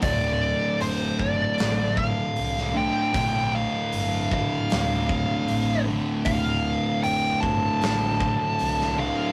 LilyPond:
<<
  \new Staff \with { instrumentName = "Lead electric guitar" } { \time 4/4 \key d \minor \tempo 4 = 77 d''4 c''8 d''4 f''4 g''8~ | g''8 f''4 f''2 r8 | f''4 g''8 a''2 f''8 | }
  \new Staff \with { instrumentName = "Tonewheel organ" } { \clef bass \time 4/4 \key d \minor <d e a>1~ | <d e a>1~ | <d e a>1 | }
  \new Staff \with { instrumentName = "Distorted electric guitar" } { \clef bass \time 4/4 \key d \minor <d, a, d>2.~ <d, a, d>8 <d, a, d>8 | <d, a, d>2.~ <d, a, d>8 <d, a, d>8 | <d, a, d>2.~ <d, a, d>8 <d, a, d>8 | }
  \new Staff \with { instrumentName = "Picked electric bass" } { \clef bass \time 4/4 \key d \minor d,,4 f,,8 g,,8 a,,4 c,4 | bes,,4 g,,4 d,,4 a,,4 | d,,4 f,,8 g,,8 a,,4 c,4 | }
  \new DrumStaff \with { instrumentName = "Drums" } \drummode { \time 4/4 <hho bd>4 hho8 bd8 <hho sn>8 bd8 hho16 sn8. | <hho bd>4 hho8 bd8 <hho sn>8 bd8 hho4 | <hho bd>4 hho8 bd8 <hho sn>8 bd8 hho16 sn8. | }
>>